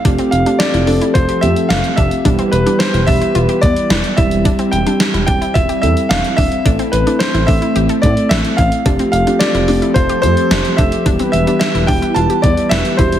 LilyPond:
<<
  \new Staff \with { instrumentName = "Grand piano" } { \time 4/4 \key e \phrygian \tempo 4 = 109 f''8 f''8 d''4 c''8 e''8 f''8 e''8~ | e''8 b'8 c''8 e''4 d''4 e''8~ | e''8 g''4 g''8 e''8 e''8 f''8 e''8~ | e''8 b'8 c''8 e''4 d''8 e''8 f''8~ |
f''8 f''8 d''4 c''8 c''4 e''8~ | e''8 e''8 e''8 g''8 a''8 d''8 e''8 c''8 | }
  \new Staff \with { instrumentName = "Synth arpeggio sound" } { \time 4/4 \key e \phrygian d'16 c'8 d'8 e'16 d'16 e'16 f'16 g'8 r16 d'8 d'8 | d'16 c'8 d'8 e'16 d'16 e'16 f'16 g'8 r16 e'8 e'8 | d'16 c'8 d'8 e'16 d'16 e'16 f'16 g'8 r16 d'8 d'8 | d'16 c'8 d'8 e'16 d'16 e'16 g'16 a'8 r16 e'8 e'8 |
d'16 c'8 d'8 e'16 d'16 e'16 f'16 g'8 r16 d'8 d'8 | d'16 c'8 d'8 e'16 d'16 e'16 f'16 g'8 r16 e'8 e'8 | }
  \new Staff \with { instrumentName = "Synth keys" } { \time 4/4 \key e \phrygian <a c' f' g'>8. <a c' f' g'>8. <a c' f' a'>4 <a c' f' g'>4~ <a c' f' g'>16 r16 | <g b e' g'>8. <g b e' g'>8. <g b e' g'>4 <g b e' g'>4 <g c' e' g'>8~ | <g c' e' g'>8 r16 <g c' e' g'>8. <g c' e' g'>4 <g c' e' a'>4~ <g c' e' a'>16 r16 | <a c' e' a'>8. <a c' e' a'>8. <a c' e' a'>4 <a c' e' a'>4~ <a c' e' a'>16 r16 |
<a c' f' g'>8. <a c' f' g'>8. <a c' f' g'>4 <a c' f' g'>4~ <a c' f' g'>16 r16 | <g b e' g'>8. <g b e' g'>8. <g b e' g'>4 <g b e' g'>4 <g c' e' g'>8 | }
  \new Staff \with { instrumentName = "Analog synth pad" } { \time 4/4 \key e \phrygian << { <f c' a'>1 | <e e' b'>2.~ <e e' b'>8 g8~ | g1 | a1 |
<f c' a'>1 | <e e' b'>2.~ <e e' b'>8 g8 | } \\ { g'1~ | g'2.~ g'8 c'8~ | c'1~ | c'1 |
g'1~ | g'2.~ g'8 c'8 | } >> }
  \new Staff \with { instrumentName = "Analog synth bass" } { \clef bass \time 4/4 \key e \phrygian f,,16 r16 f,,16 r8 f,,16 f,,16 r16 f,,16 r16 f,16 r16 f,,16 r16 f,,16 r16 | e,,16 r16 e,,16 r8 e,,16 e,,16 r16 e,,16 r16 e,16 r16 e,,16 r16 e,,8~ | e,,16 r16 e,,16 r8 e,,16 e,,16 r16 e,,16 r16 e,16 r16 e,,16 r16 e,,16 r16 | a,,16 r16 a,,16 r8 a,,16 a,,16 r16 a,,16 r16 a,16 r16 a,,16 r16 a,,16 r16 |
f,,16 r16 f,,16 r8 f,,16 f,,16 r16 f,,16 r16 f,16 r16 f,,16 r16 f,,16 r16 | e,,16 r16 e,,16 r8 e,,16 e,,16 r16 e,,16 r16 e,16 r16 e,,16 r16 e,,8 | }
  \new DrumStaff \with { instrumentName = "Drums" } \drummode { \time 4/4 <hh bd>16 hh16 hh16 hh16 <hh sn>16 hh16 hho16 hh16 <hh bd>16 hh16 hh16 hh16 <hh sn>16 hh16 <hh bd>16 hh16 | <hh bd>16 hh16 hh16 hh16 <hh sn>16 hh16 <hho bd>16 hh16 hh16 hh16 <hh bd>16 hh16 <hh sn>16 hh16 <hh bd>16 hh16 | <hh bd>16 hh16 hh16 hh16 <hh sn>16 hh16 <hh bd>16 hh16 <hh bd>16 hh16 hh16 hh16 <hh sn>16 hh16 <hho bd>16 hh16 | <hh bd>16 hh16 hh16 hh16 <hh sn>16 hh16 <hho bd>16 hh16 hh16 hh16 <hh bd>16 hh16 <hh sn>16 hh16 <hh bd>16 hh16 |
<hh bd>16 hh16 hh16 hh16 <hh sn>16 hh16 hho16 hh16 <hh bd>16 hh16 hh16 hh16 <hh sn>16 hh16 <hh bd>16 hh16 | <hh bd>16 hh16 hh16 hh16 <hh sn>16 hh16 <hho bd>16 hh16 hh16 hh16 <hh bd>16 hh16 <hh sn>16 hh16 <hh bd>16 hh16 | }
>>